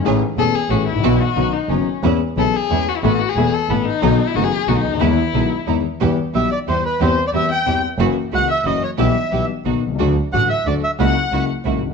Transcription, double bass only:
X:1
M:3/4
L:1/8
Q:1/4=181
K:E
V:1 name="Double bass" clef=bass
A,,, z E,,, z A,,, A,,, | B,,, z B,,, z F,,, z | E,, z B,,, z E,, z | A,,, z E,,, z A,,, z |
B,,, z F,,, z B,,, =D,, | E,, z B,,, z E,, z | [K:Em] E,, z B,,, z E,, z | E,, z E,, z E,, z |
F,,, z ^C,, z F,,, z | B,,, z B,,, z B,,, C,, | D,, z A,,, z D,, z | ^C,, z C,, z C,, A,,, |]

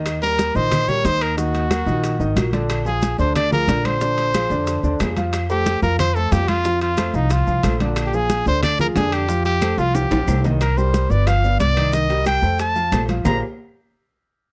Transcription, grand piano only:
X:1
M:4/4
L:1/8
Q:1/4=182
K:Fdor
V:1 name="Grand piano"
[E,Ee] [G,GB]2 [E,Ee]2 [G,GB] [E,Ee]2 | [E,Ee]2 [_G,_GB] [E,Ee]2 [E,Ee] [G,GB] [D,Dd]- | [D,Dd] [F,FA]2 [D,Dd]2 [F,FA] [D,Dd]2 | [D,Dd]2 [F,FA] [D,Dd]2 [D,Dd] [F,FA] [F,Ff]- |
[F,Ff] [=A,=Ac]2 [F,Ff]2 [A,Ac] [F,Ff]2 | [F,Ff]2 [=A,=Ac] [F,Ff]2 [F,Ff] [A,Ac] [D,Dd]- | [D,Dd] [F,FA]2 [D,Dd]2 [F,FA] [D,Dd]2 | [F,Ff]2 [=A,=Ac] [F,Ff]2 [F,Ff] [A,Ac] [E,Ee] |
z [G,GB]2 [_C_cd] [F,Ff] [=B,=Bd]2 [E,Ee] | [E,Ee] [G,GB]2 [=A,=Ac]2 [F,Ff] [A,Ac] [F,Ff] | [B,FGABc] z6 z |]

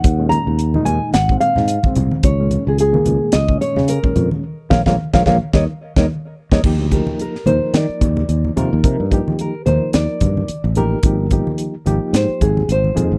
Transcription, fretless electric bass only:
X:1
M:4/4
L:1/16
Q:"Swing 16ths" 1/4=109
K:Ebdor
V:1 name="Fretless electric bass" clef=bass
E,,3 E,,3 E,, z A,,,2 z A,,2 z C,, z | D,,3 D,,3 D,, z D,,2 z D,2 z F,, z | z2 B,,, B,,, z B,,, B,,, z E,, z2 E,, z3 E,, | [K:Eb] E,, D,,2 z3 E,, z E, z E,,2 E,,2 C, E,, |
C, G,,2 z3 E,, z E,, z G,,2 z =A,,,3 | A,,, G,,,2 z3 A,,, z A,, z A,,,2 A,,,2 F,, A,,, |]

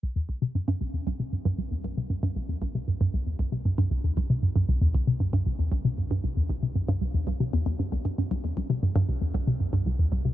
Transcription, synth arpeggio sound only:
X:1
M:4/4
L:1/16
Q:1/4=116
K:C
V:1 name="Synth arpeggio sound" clef=bass
C,, E,, C,, C, G,, G,, C,, E,, C,, C, G,, G,, C,, E,, C,, C, | G,, G,, C,, E,, C,, C, G,, G,, C,, E,, C,, C, G,, G,, C,, E,, | C,, C, G,, G,, C,, E,, C,, C, G,, G,, C,, E,, C,, C, G,, G,, | C,, E,, C,, C, G,, G,, C,, E,, C,, C, E,, E,, G,, C,, G,, G,, |
C,, E,, C,, C, G,, G,, C,, E,, C,, C, G,, G,, C,, E,, C,, C, |]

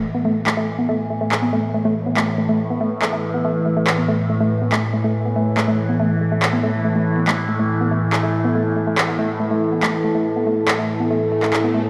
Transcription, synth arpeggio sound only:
X:1
M:4/4
L:1/16
Q:1/4=141
K:C
V:1 name="Synth arpeggio sound"
z B, A, z A, A, z B, A, z A, A, z B, A, z | A, A, z B, A, z A, A, z B, A, z A, A, z B, | A, z A, A, z B, A, z A, A, z B, A, z A, A, | z B, A, z A, A, z B, A, z A, A, z B, A, z |
A, A, z B, A, z A, A, z B, A, z A, A, z B, | A, z A, A, z B, A, z A, A, z B, A, z A, A, | z B, A, z A, A, z B, A, z A, A, z B, A, z |]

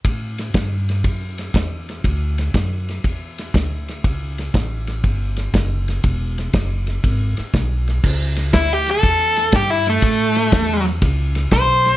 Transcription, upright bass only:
X:1
M:4/4
L:1/8
Q:"Swing" 1/4=120
K:Amix
V:1 name="Upright bass" clef=bass
A,,2 G,,2 F,,2 E,,2 | D,,2 F,,2 E,,2 D,,2 | C,,2 A,,,2 G,,,2 F,,,2 | E,,,2 F,,,2 ^G,,, z B,,,2 |
C,,2 D,,2 E,,2 G,,2 | A,,2 E,,2 C,,2 B,,,2 |]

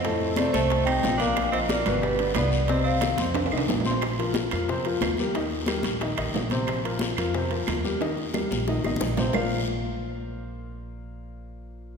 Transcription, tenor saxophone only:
X:1
M:4/4
L:1/16
Q:1/4=180
K:Bb
V:1 name="Tenor saxophone"
C4 A,2 A,4 E4 D2- | D2 C2 B,4 G,4 =B,3- B,/2 B,/2 | C2 C4 z8 z2 | z16 |
z16 | z16 | z16 | z16 |
z16 |]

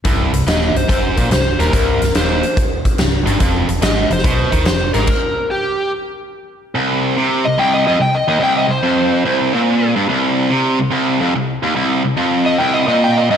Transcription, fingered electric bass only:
X:1
M:4/4
L:1/8
Q:"Swing" 1/4=144
K:F
V:1 name="Fingered electric bass" clef=bass
C,,, C,,, _E,,, C,,, ^F,,, B,,, C,,, E,,, | C,,, C,,, _E,,, z3 C,,, G,,, | F,,, F,,, _A,,, F,,, =B,,, _E,, F,,, A,,, | z8 |
z8 | z8 | z8 | z8 |]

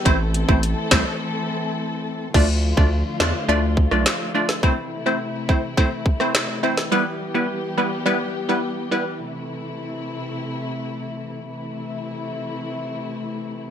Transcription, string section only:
X:1
M:4/4
L:1/8
Q:1/4=105
K:Am
V:1 name="String section"
[E,A,CA]8 | [D,F,A,F]8 | [C,E,A,E]8 | [G,B,G]8 |
[C,A,E]8 | [C,E,A,E]8 |]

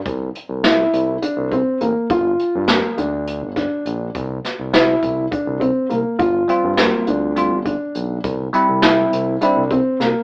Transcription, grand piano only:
X:1
M:7/8
L:1/8
Q:1/4=102
K:Cmix
V:1 name="Grand piano"
z2 E2 D C B, | F2 B, D2 D2 | z2 E2 D C B, | F2 B, D2 D2 |
z2 E2 D C B, |]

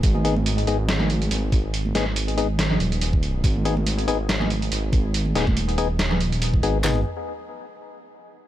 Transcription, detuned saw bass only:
X:1
M:4/4
L:1/8
Q:"Swing 16ths" 1/4=141
K:G#m
V:1 name="Detuned saw bass" clef=bass
G,,,3 G,,,3 G,,,2- | G,,, G,,,4 D,,,3 | G,,,3 G,,,3 G,,,2- | G,,, D,,,6 G,,, |
G,,, z6 z |]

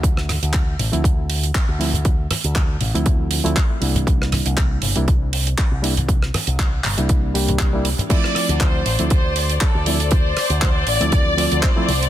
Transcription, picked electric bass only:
X:1
M:4/4
L:1/16
Q:"Swing 16ths" 1/4=119
K:Dm
V:1 name="Picked electric bass" clef=bass
D,,3 D,,3 A,,, D,,4- D,, z D,,3- | D,,2 z D,,3 A,,, D,,4 D,, z2 C,,2- | C,,3 C,,3 G,,, C,,4- C,, z C,,3- | C,,2 z C,,3 G,,, C,,3 C,,4- C,, z |
z3 D,,3 A,,, D,,4- D,, z D,,3- | D,,2 z D,,3 A,,, D,,4 D,, z2 C,,2 |]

